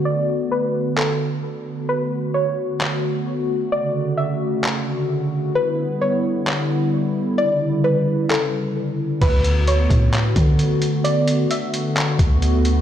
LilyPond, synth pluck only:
\new Staff \with { instrumentName = "Synth pluck" } { \time 4/4 \key d \major \tempo 4 = 131 d''4 b'4 a'2 | b'4 cis''2. | d''4 e''2 r4 | b'4 cis''2. |
d''4 b'4 a'2 | b'4 cis''2. | d''4 e''2 r4 | }